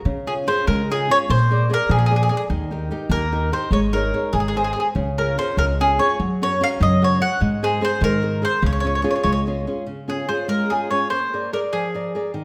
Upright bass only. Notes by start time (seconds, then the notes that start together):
0.05 C#3
0.68 C#3
1.29 A#2
1.89 A#2
2.50 D#2
3.09 D#2
3.71 G#1
4.33 G#1
4.96 C#2
5.57 C#2
6.20 F#2
6.81 F#2
7.41 G#2
8.01 G#2
8.62 C#2
9.24 C#2